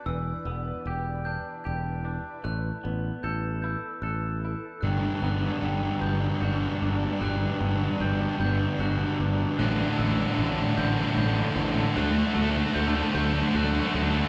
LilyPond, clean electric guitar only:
\new Staff \with { instrumentName = "Clean electric guitar" } { \time 6/8 \key g \lydian \tempo 4. = 50 e8 b8 g'8 d'8 g'8 d'8 | a8 b8 a'8 e'8 a'8 e'8 | g8 b8 g8 b8 fis'8 d'8 | g8 b8 g8 b8 fis'8 d'8 |
r2. | r2. | }